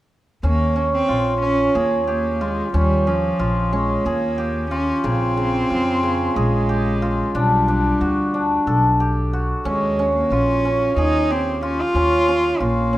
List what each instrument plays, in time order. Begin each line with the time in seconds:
0.43 upright bass D#2, cello A#3, hammered dulcimer C#4
0.76 hammered dulcimer C#4
0.94 cello C4
1.09 upright bass A#1, hammered dulcimer F4
1.42 cello C#4, hammered dulcimer C#4
1.75 upright bass D#2, cello A#3, hammered dulcimer G#4
2.07 cello A#3, hammered dulcimer G4
2.40 cello G#3, hammered dulcimer F4
2.74 upright bass D#2, cello G3, hammered dulcimer C#4
3.07 cello F3, hammered dulcimer C#4
3.39 upright bass A#1, hammered dulcimer F4
3.72 cello G#3, hammered dulcimer C#4
4.05 upright bass D#2, cello A#3, hammered dulcimer G#4
4.38 hammered dulcimer G4
4.71 cello C#4, hammered dulcimer F4
4.96 cello C#4
5.04 upright bass A#1, hammered dulcimer C#3, cello C4
5.37 hammered dulcimer C#3
5.70 upright bass F2, hammered dulcimer F4
6.03 hammered dulcimer C#3
6.36 upright bass A#1, cello G#3, hammered dulcimer G#4
6.69 hammered dulcimer G4
7.02 hammered dulcimer F4
7.35 upright bass B1, cello G3, hammered dulcimer D4
7.68 hammered dulcimer D4
8.01 upright bass D2, hammered dulcimer F#4
8.34 hammered dulcimer D4
8.67 upright bass B1, hammered dulcimer A4
9.00 hammered dulcimer G4
9.33 hammered dulcimer F#4
9.65 upright bass D#2, cello G#3, hammered dulcimer C#4
9.99 hammered dulcimer C#4
10.16 cello A#3
10.30 upright bass A#1, cello C#4, hammered dulcimer F4
10.65 hammered dulcimer C#4
10.96 upright bass D#2, cello D#4, hammered dulcimer G#4
11.30 cello C4, hammered dulcimer G4
11.63 cello C#4, hammered dulcimer F4
11.81 cello F4
11.94 upright bass D#2, hammered dulcimer C#4
12.28 hammered dulcimer C#4
12.60 upright bass A#1, cello A#3, hammered dulcimer F4
12.93 hammered dulcimer C#4